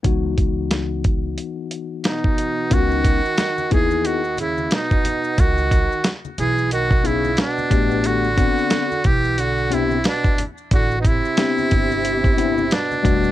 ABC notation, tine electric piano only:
X:1
M:4/4
L:1/8
Q:"Swing 16ths" 1/4=90
K:A
V:1 name="Tine electric piano"
[E,B,^DF]8 | [B,C^D^EF] z2 [B,D=EG] z4 | z4 z [B,^DEG] z [A,B,=D=G]- | [A,B,D=G] [B,=CDF] z3 [B,CDG] z2 |
z2 [B,=CD=G]3 [B,CDE] z [=G,A,DF] |]